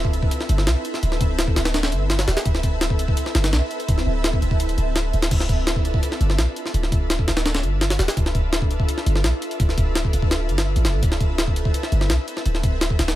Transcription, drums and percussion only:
0.05 kick loud
0.13 closed hi-hat medium
0.23 kick loud
0.31 closed hi-hat medium
0.40 snare soft
0.49 closed hi-hat medium
0.58 snare medium
0.67 snare loud
0.67 closed hi-hat medium
0.85 closed hi-hat medium
0.94 snare soft
1.03 closed hi-hat medium
1.12 snare soft
1.21 kick loud
1.21 closed hi-hat medium
1.39 snare loud
1.39 closed hi-hat medium
1.48 kick loud
1.56 snare loud
1.56 closed hi-hat medium
1.65 snare loud
1.65 closed hi-hat medium
1.74 snare loud
1.74 closed hi-hat medium
1.83 snare loud
1.83 closed hi-hat medium
1.92 closed hi-hat medium
2.10 snare loud
2.10 closed hi-hat medium
2.19 snare loud
2.19 closed hi-hat medium
2.28 snare loud
2.28 closed hi-hat medium
2.37 snare loud
2.37 closed hi-hat medium
2.46 kick loud
2.46 closed hi-hat medium
2.55 snare medium
2.63 kick medium
2.63 closed hi-hat medium
2.81 snare loud
2.81 closed hi-hat medium
2.90 kick medium
2.99 closed hi-hat medium
3.08 kick loud
3.17 closed hi-hat medium
3.26 snare soft
3.35 snare loud
3.35 closed hi-hat medium
3.44 snare loud
3.44 closed hi-hat medium
3.53 snare loud
3.53 closed hi-hat medium
3.71 closed hi-hat medium
3.80 closed hi-hat soft
3.88 kick loud
3.88 closed hi-hat medium
3.98 snare soft
4.24 snare loud
4.24 closed hi-hat medium
4.33 kick medium
4.42 closed hi-hat medium
4.51 kick loud
4.60 closed hi-hat medium
4.69 closed hi-hat soft
4.78 closed hi-hat medium
4.96 snare loud
4.96 closed hi-hat medium
5.13 closed hi-hat medium
5.22 snare loud
5.22 closed hi-hat medium
5.31 kick loud
5.31 closed hi-hat medium
5.31 crash medium
5.40 snare medium
5.49 kick medium
5.49 closed hi-hat medium
5.67 snare loud
5.67 closed hi-hat medium
5.76 kick loud
5.85 closed hi-hat medium
5.94 kick loud
6.03 closed hi-hat medium
6.12 snare soft
6.21 closed hi-hat medium
6.30 snare soft
6.38 snare loud
6.38 closed hi-hat medium
6.56 closed hi-hat medium
6.66 snare soft
6.74 closed hi-hat medium
6.83 snare soft
6.92 kick loud
6.92 closed hi-hat medium
7.10 snare loud
7.10 closed hi-hat medium
7.19 kick loud
7.28 snare loud
7.28 closed hi-hat medium
7.37 snare loud
7.37 closed hi-hat medium
7.46 snare loud
7.46 closed hi-hat medium
7.55 snare loud
7.55 closed hi-hat medium
7.63 closed hi-hat medium
7.81 snare loud
7.81 closed hi-hat medium
7.90 snare loud
7.90 closed hi-hat medium
7.99 snare loud
7.99 closed hi-hat medium
8.08 snare loud
8.08 closed hi-hat medium
8.17 kick loud
8.17 closed hi-hat medium
8.26 snare medium
8.35 kick medium
8.35 closed hi-hat medium
8.53 snare loud
8.53 closed hi-hat medium
8.62 kick loud
8.71 closed hi-hat medium
8.80 kick loud
8.89 closed hi-hat medium
8.98 snare soft
9.06 closed hi-hat medium
9.16 snare soft
9.24 snare loud
9.24 closed hi-hat medium
9.42 closed hi-hat medium
9.51 closed hi-hat soft
9.60 kick loud
9.60 closed hi-hat medium
9.69 snare soft
9.78 kick loud
9.78 closed hi-hat medium
9.95 snare loud
9.95 closed hi-hat medium
10.05 kick medium
10.13 closed hi-hat medium
10.22 kick loud
10.31 snare loud
10.31 closed hi-hat medium
10.49 closed hi-hat medium
10.58 snare loud
10.58 closed hi-hat medium
10.76 closed hi-hat medium
10.85 snare loud
10.85 closed hi-hat medium
11.03 kick loud
11.03 closed hi-hat medium
11.12 snare medium
11.21 kick loud
11.21 closed hi-hat medium
11.38 snare loud
11.38 closed hi-hat medium
11.48 kick medium
11.56 closed hi-hat medium
11.65 kick loud
11.74 closed hi-hat medium
11.83 snare soft
11.92 closed hi-hat medium
12.01 snare soft
12.10 snare loud
12.10 closed hi-hat medium
12.28 closed hi-hat medium
12.37 snare soft
12.46 closed hi-hat medium
12.55 snare soft
12.63 kick loud
12.63 closed hi-hat medium
12.81 snare loud
12.81 closed hi-hat medium
12.90 kick loud
12.99 snare loud
12.99 closed hi-hat medium
13.08 snare loud
13.08 closed hi-hat medium

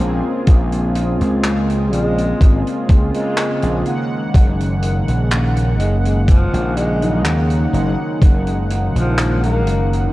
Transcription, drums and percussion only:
0.47 kick loud
0.47 closed hi-hat medium
0.72 closed hi-hat soft
0.95 closed hi-hat medium
1.21 closed hi-hat soft
1.44 clap loud
1.44 closed hi-hat medium
1.70 closed hi-hat medium
1.93 closed hi-hat medium
2.18 closed hi-hat medium
2.41 kick loud
2.41 closed hi-hat loud
2.67 closed hi-hat soft
2.89 kick loud
2.89 closed hi-hat medium
3.14 closed hi-hat medium
3.38 clap loud
3.38 closed hi-hat medium
3.62 closed hi-hat medium
3.85 closed hi-hat soft
4.34 kick loud
4.34 closed hi-hat loud
4.60 closed hi-hat medium
4.82 closed hi-hat medium
5.08 closed hi-hat medium
5.31 clap loud
5.31 closed hi-hat medium
5.56 closed hi-hat medium
5.80 closed hi-hat medium
6.05 closed hi-hat medium
6.28 kick loud
6.28 closed hi-hat loud
6.54 closed hi-hat medium
6.77 closed hi-hat medium
7.02 closed hi-hat medium
7.25 clap loud
7.25 closed hi-hat medium
7.50 closed hi-hat medium
7.74 closed hi-hat medium
8.22 kick loud
8.22 closed hi-hat loud
8.47 closed hi-hat medium
8.70 closed hi-hat medium
8.96 closed hi-hat medium
9.18 clap loud
9.18 closed hi-hat loud
9.43 closed hi-hat medium
9.67 closed hi-hat medium
9.93 closed hi-hat medium

